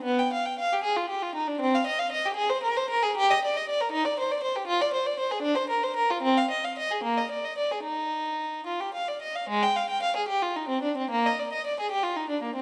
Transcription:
X:1
M:6/8
L:1/16
Q:3/8=76
K:Fdor
V:1 name="Violin"
=B, g f g f G A F G F E D | C f e f e G A c B c B A | G e d e d B E d c d c G | F d c d c A D c B c B F |
C f e f e A B, e d e d A | E6 F G f d e f | A, g f g f A G F E C D C | B, e d e d A G F E D B, C |]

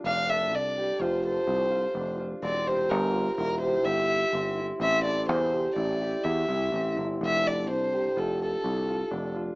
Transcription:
X:1
M:5/4
L:1/8
Q:1/4=126
K:F
V:1 name="Violin"
f e d2 c c4 z | d c B2 B c e3 z | e d c2 d2 e3 z | e d c2 A A4 z |]
V:2 name="Harp"
D A2 G F A2 F D F | C G2 F E G2 E C E | C A2 G E G2 E C E | D A2 G F A2 F D F |]
V:3 name="Picked electric bass" clef=bass
F,,,2 C,,2 F,,,2 C,,2 F,,,2 | E,,,2 G,,,2 E,,,2 G,,,2 G,,,2 | A,,,2 E,,2 A,,,2 E,, C,, A,,, G,,, | F,,,2 C,,2 F,,,2 C,,2 F,,,2 |]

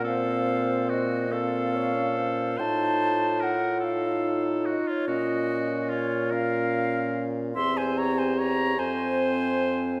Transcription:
X:1
M:6/8
L:1/16
Q:3/8=48
K:Fphr
V:1 name="Flute"
f4 e2 f6 | =a4 g2 f4 e d | e4 d2 f4- f z | c' a b a b2 a6 |]
V:2 name="Clarinet"
c6 =A2 d2 c2 | F12- | F8- F2 z2 | =G6 c6 |]
V:3 name="Oboe"
=A4 G2 A6 | c4 B2 =A4 G F | G4 F2 B4- B z | =e c d c d2 c6 |]
V:4 name="French horn"
C6 C3 D3 | E4- E z E6 | D6 D6 | C6 C6 |]
V:5 name="Bassoon" clef=bass
B,,12 | =A,,8- A,,2 z2 | B,,12 | =E,,6 F,,6 |]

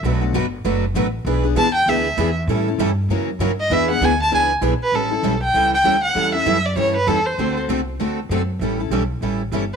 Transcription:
X:1
M:4/4
L:1/8
Q:"Swing" 1/4=196
K:Amix
V:1 name="Violin"
z8 | z2 a g e3 z | z6 z ^d | e f ^g a g z2 B |
A3 g2 g2 f- | f e2 d c B A =c- | =c z6 z | z8 |]
V:2 name="Steel-string acoustic guitar"
[B,,F,A,DF] [A,DF] [B,,F,A,DF] z [B,,F,A,DF] z [B,,F,A,DF] z | [E,B,D^G] [B,DG] [E,B,DG] z [E,B,DG] z [E,B,DG] z | [E,G,CEA] [CEA] [E,G,CEA] z [C,E,^A,CF] z [C,E,A,CF] z | [E,B,D^G] [B,DG] [E,B,DG] z [E,B,DG] z [E,B,DG] z |
[E,G,CEA] [CEA] [E,G,CEA] z [E,G,CEA] z [E,G,CEA] z | [E,G,CEA] [CEA] [E,G,CEA] z [E,G,CEA] z [E,G,CEA] z | [D,A,=CFA] [CFA] [D,A,CFA] z [D,A,CFA] z [D,A,CFA] z | [E,G,CEA] [CEA] [E,G,CEA] z [E,G,CEA] z [E,G,CEA] z |]
V:3 name="Steel-string acoustic guitar"
[B,,F,A,DFB] z [B,,F,A,DFB] z [B,,F,A,DFB] z [B,,F,A,DFB] z | [E,B,D^GB] z [E,B,DGB] z [E,B,DGB] z [E,B,DGB] z | [E,G,CEA] z [E,G,CEA] z [F,CE^A] z [F,CEA] z | [E,B,D^GB] z [E,B,DGB] z [E,B,DGB] z [E,B,DGB] z |
[E,G,CEA] z [E,G,CEA] z [E,G,CEA] z [E,G,CEA] z | [E,G,CEA] z [E,G,CEA] z [E,G,CEA] z [E,G,CEA] z | [D,A,=CFA] z [D,A,CFA] z [D,A,CFA] z [D,A,CFA] z | [E,G,CEA] z [E,G,CEA] z [E,G,CEA] z [E,G,CEA] z |]
V:4 name="Upright bass" clef=bass
B,,,2 G,,,2 F,,,2 A,,,2 | B,,,2 E,,2 D,,2 E,,2 | A,,2 G,,2 F,,2 G,,2 | E,,2 D,,2 C,,2 B,,, z |
A,,,2 B,,,2 C,,2 D,,2 | E,,2 F,,2 G,,2 E,,2 | D,,2 =C,,2 D,,2 F,,2 | A,,,2 B,,,2 A,,,2 G,,,2 |]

